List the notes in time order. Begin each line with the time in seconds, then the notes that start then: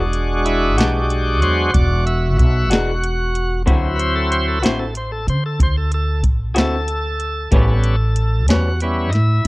Already playing: E1 G#3 D4 F#4
0.13 closed hi-hat
0.46 E4, closed hi-hat
0.78 B1 E3 G#3 D4 F#4 G4, snare, closed hi-hat
1.10 closed hi-hat
1.41 E2 F#3 G#3 D4 C5, closed hi-hat
1.74 E1 D5, kick, closed hi-hat
2.06 E5, closed hi-hat
2.38 B1 E5, kick, closed hi-hat
2.70 E1 E3 G#3 D4 F#4, snare, closed hi-hat
3.03 closed hi-hat
3.35 closed hi-hat
3.66 D2 D3 F#3 C4 E4 F#4, kick, closed hi-hat
3.96 B4, closed hi-hat
4.00 C5
4.15 A4
4.31 C5, closed hi-hat
4.48 A4
4.60 A1 C4 E4 F#4 B4, closed hi-hat
4.64 D3 C5, snare
4.79 A4
4.95 C5, closed hi-hat
5.12 A4
5.27 D3 C5, closed hi-hat
5.46 A4
5.59 D2 C5, kick, closed hi-hat
5.77 A4
5.92 A4, closed hi-hat
6.24 A1, kick, closed hi-hat
6.55 D2 D3 C4 E4 F#4 G#4, snare, closed hi-hat
6.60 A4
6.88 closed hi-hat
7.20 closed hi-hat
7.51 A1 A2 G3 B3 C#4, kick, closed hi-hat
7.84 closed hi-hat
8.16 closed hi-hat
8.48 E2 A2 G3 B3 C#4 F#4, snare, closed hi-hat
8.81 G3 B3 C#4 E4, closed hi-hat
9.10 D#4, closed hi-hat
9.14 A2 E4, snare